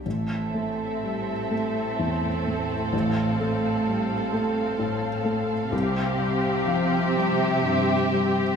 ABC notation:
X:1
M:6/8
L:1/8
Q:3/8=42
K:Am
V:1 name="Violin section"
e6 | f6- | f3 e3 |]
V:2 name="Violin section"
A6- | A6 | G6 |]
V:3 name="Viola section"
C6- | C6 | C6 |]
V:4 name="Felt piano" clef=bass
A,,, A, G, A, E,, A, | A,,, A, G, A, A,, A, | C,, G, F, G, G,, G, |]
V:5 name="Cello section" clef=bass
A,,6- | A,,6 | C,6 |]